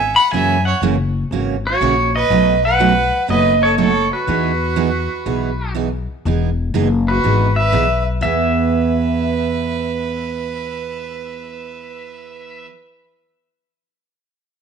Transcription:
Already playing: G#1 E5 G#5
0.16 F#5 B5
0.32 F#2 C#3 E3 A#3 C#4 F#4 E5 G#5
0.65 C#5 F#5
0.82 F#1 C#3 E3 A#3 C#4 F#4
1.31 G#1 C#3 E3 A#3 C#4 F#4
1.67 F#4 C#5
1.81 A#1 C#3 E3 A#3 C#4 F#4
2.16 B4 D#5
2.30 B1 B2 F#3 A3 D#4 F#4
2.65 B4 F#5
2.79 B2 F#3 A3 D#4 F#4
3.28 F#1 B2 F#3 A3 D#4 F#4 B4 D#5
3.63 A4 C#5
3.78 B2 F#3 A3 D#4 F#4 A4 C#5
4.13 F#4 B4
4.27 E2 E3 B3 D#4 G#4
4.76 E3 B3 D#4 G#4
5.26 B1 E3 B3 D#4 G#4
5.75 E3 B3 D#4 G#4
6.25 E1 E3 B3 D#4 G#4
6.74 F#1 E3 B3 D#4 G#4
7.08 F#4 B4
7.24 G#1 E3 B3 D#4 G#4
7.56 B4 E5
7.72 B1 E3 B3 D#4 G#4
8.21 E2 E3 B3 G#4 B4 E5

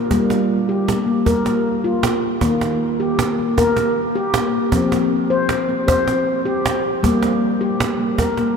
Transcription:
0.11 G3 A#3, cajon bass, cajon slap
0.30 cajon slap
0.69 G4
0.88 cajon slap
1.07 A#3, cajon slap
1.26 A#4, cajon bass, cajon slap
1.46 A#3, cajon slap
1.84 F4, cajon slap
2.03 cajon slap
2.41 D#3 A#3, cajon bass, cajon slap
2.61 cajon slap
3.00 G4
3.19 cajon slap
3.38 A#3, cajon slap
3.58 A#4, cajon bass, cajon slap
3.77 A#3, cajon slap
4.15 G4, cajon slap
4.34 cajon slap
4.72 F3 C4, cajon bass, cajon slap
4.92 cajon slap
5.30 C5
5.49 cajon slap
5.69 C4, cajon slap
5.88 C5, cajon bass, cajon slap
6.07 C4, cajon slap
6.45 G4, cajon slap
6.66 cajon slap
7.03 G3 A#3, cajon bass, cajon slap
7.23 cajon slap
7.61 G4
7.80 cajon slap
8.00 A#3
8.18 A#4, cajon bass, cajon slap
8.37 A#3, cajon slap

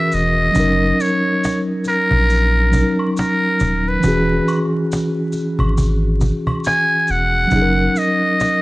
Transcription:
Already playing: E3 C#4 F#4 A#4 E5
0.12 E1 D#5, cajon slap, maracas
0.52 F#3 C#4, maracas
0.56 F#1 D#4 A#4, cajon bass
0.99 C#5, cajon slap, maracas
1.44 cajon slap, maracas
1.84 A#4, cajon slap, maracas
2.11 A#1, cajon bass
2.30 cajon slap, maracas
2.71 F#3 C#4 D#4, cajon bass, maracas
2.75 A#4
2.98 cajon slap, high woodblock
3.17 A#4, cajon slap, maracas
3.60 D#1, cajon bass, maracas
3.88 B4
4.00 E3 C#4, cajon bass, maracas
4.04 E1 F#4 G#4
4.47 cajon slap, high woodblock, maracas
4.73 cajon slap
4.92 cajon slap, maracas
5.32 cajon slap, maracas
5.59 G#1, cajon bass, high woodblock
5.78 cajon bass, maracas
6.21 cajon bass, maracas
6.47 cajon bass, high woodblock
6.64 G#5, cajon slap, maracas
7.07 E1 F#5, cajon slap, maracas
7.47 F#3 C#4, maracas
7.52 F#1 D#4 G#4, cajon bass
7.62 A#4
7.95 D#5, cajon slap, maracas
8.40 cajon slap, maracas

